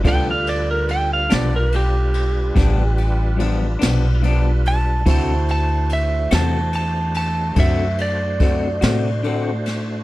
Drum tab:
RD |xxxxxxxxxxxx|xxxxxxxxxxxx|
SD |---o--o--o--|---o-----o-o|
BD |o-----o-----|o-----o-o---|